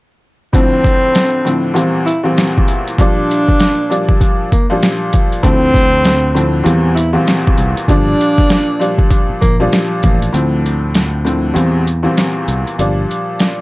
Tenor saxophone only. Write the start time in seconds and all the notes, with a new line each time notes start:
0.53 C4
2.06 E4
2.99 D4
4.52 A#3
5.44 C4
6.95 E4
7.88 D4
9.41 A#3